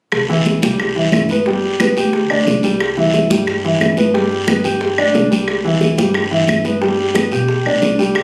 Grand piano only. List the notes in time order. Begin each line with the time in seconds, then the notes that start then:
0.29 E3 E4
0.63 G3 G4
0.96 E3 E4
1.31 B3 B4
1.47 G3 G4
1.80 B3 B4
1.97 G4 G5
2.30 D4 D5
2.64 G3 G4
2.97 E3 E4
3.30 G3 G4
3.65 E3 E4
3.98 B3 B4
4.14 G3 G4
4.48 B3 B4
4.64 G4 G5
4.98 D4 D5
5.31 G3 G4
5.65 E3 E4
5.98 G3 G4
6.31 E3 E4
6.65 B3 B4
6.81 G3 G4
7.15 B3 B4
7.32 G4 G5
7.66 D4 D5
7.99 G3 G4